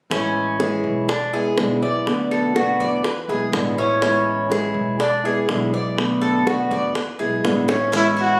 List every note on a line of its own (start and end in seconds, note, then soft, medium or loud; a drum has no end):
0.10 0.80 A1 medium
0.10 0.58 E3 medium
0.10 0.59 G#3 medium
0.10 0.59 C#4 medium
0.10 0.59 E4 medium
0.10 high bongo medium
0.59 1.08 E3 medium
0.59 1.08 G#3 medium
0.59 1.08 C#4 medium
0.59 1.09 E4 medium
0.59 1.08 G#4 medium
0.59 high bongo medium
0.84 1.53 E1 medium
1.09 1.32 D4 medium
1.09 muted steel-string acoustic guitar stroke medium
1.09 high bongo medium
1.33 1.58 G#3 soft
1.33 1.57 B3 soft
1.33 1.57 E4 soft
1.33 1.81 G#4 medium
1.58 2.74 B1 medium
1.58 1.81 B2 medium
1.58 1.82 D3 medium
1.58 1.82 G#3 medium
1.58 1.82 B3 medium
1.58 1.80 E4 medium
1.58 high bongo medium
1.58 low bongo medium
1.82 2.06 G#3 soft
1.82 2.06 B3 soft
1.82 2.05 E4 soft
1.82 2.30 D5 medium
2.06 2.53 B2 medium
2.06 2.54 D3 medium
2.06 2.54 A3 medium
2.06 2.55 B3 medium
2.06 2.55 F#4 medium
2.06 high bongo medium
2.31 2.55 A4 medium
2.31 high bongo soft
2.54 3.03 B2 medium
2.54 3.03 D3 medium
2.54 3.03 A3 medium
2.54 3.04 B3 medium
2.54 2.80 F#4 medium
2.54 3.04 F#4 medium
2.54 high bongo medium
2.80 3.25 E2 medium
2.80 3.04 D5 medium
2.80 high bongo soft
3.04 3.28 B4 soft
3.04 muted steel-string acoustic guitar stroke medium
3.04 high bongo medium
3.28 3.51 B1 medium
3.28 3.53 G#3 soft
3.28 3.53 B3 soft
3.28 3.52 E4 soft
3.28 3.77 G#4 medium
3.28 high bongo soft
3.52 4.69 A1 medium
3.52 3.76 B2 medium
3.52 3.77 D3 medium
3.52 3.77 G#3 medium
3.52 3.77 B3 medium
3.52 3.76 E4 medium
3.52 high bongo medium
3.52 low bongo medium
3.77 4.00 G#3 soft
3.77 4.01 B3 soft
3.77 4.01 C#4 medium
3.77 4.01 E4 soft
4.01 4.48 E3 medium
4.01 4.49 G#3 medium
4.01 4.50 C#4 medium
4.01 4.50 E4 medium
4.01 high bongo medium
4.49 4.98 E3 medium
4.49 4.98 G#3 medium
4.49 4.99 C#4 medium
4.49 4.98 E4 medium
4.49 4.99 G#4 medium
4.49 high bongo medium
4.74 5.44 E1 medium
4.99 5.24 D4 medium
4.99 muted steel-string acoustic guitar stroke medium
4.99 high bongo medium
5.23 5.48 G#3 soft
5.23 5.48 B3 soft
5.23 5.47 E4 soft
5.23 5.72 G#4 medium
5.48 6.64 B1 medium
5.48 5.72 B2 medium
5.48 5.72 D3 medium
5.48 5.72 G#3 medium
5.48 5.72 B3 medium
5.48 5.71 E4 medium
5.48 high bongo medium
5.48 low bongo medium
5.72 5.97 G#3 soft
5.72 5.97 B3 soft
5.72 5.96 E4 soft
5.72 6.21 D5 medium
5.96 6.44 B2 medium
5.96 6.45 D3 medium
5.96 6.46 A3 medium
5.96 6.46 B3 medium
5.96 6.46 F#4 medium
5.96 high bongo medium
6.21 6.46 A4 medium
6.21 high bongo soft
6.46 6.94 B2 medium
6.46 6.94 D3 medium
6.46 6.95 A3 medium
6.46 6.94 B3 medium
6.46 6.71 F#4 medium
6.46 6.95 F#4 medium
6.46 high bongo medium
6.70 7.16 E2 medium
6.70 6.95 D5 medium
6.70 high bongo soft
6.95 7.19 B4 medium
6.95 muted steel-string acoustic guitar stroke medium
6.95 high bongo medium
7.19 7.43 B1 medium
7.19 7.43 G#3 soft
7.19 7.44 B3 soft
7.19 7.43 E4 soft
7.19 7.67 G#4 medium
7.19 high bongo soft
7.43 8.40 A1 medium
7.43 7.67 B2 medium
7.43 7.68 D3 medium
7.43 7.68 G#3 medium
7.43 7.68 B3 medium
7.43 7.67 E4 medium
7.43 high bongo medium
7.43 low bongo medium
7.68 7.92 G#3 soft
7.68 7.93 B3 soft
7.68 7.91 C#4 medium
7.68 7.92 E4 soft
7.68 high bongo medium
7.92 8.40 E3 medium
7.92 8.40 G#3 medium
7.92 8.17 C#4 medium
7.92 8.40 C#4 medium
7.92 8.40 E4 medium
7.92 high bongo medium
7.92 maracas medium
7.96 8.07 E4 medium
8.17 8.40 E4 medium
8.17 maracas soft
8.21 8.40 F#4 medium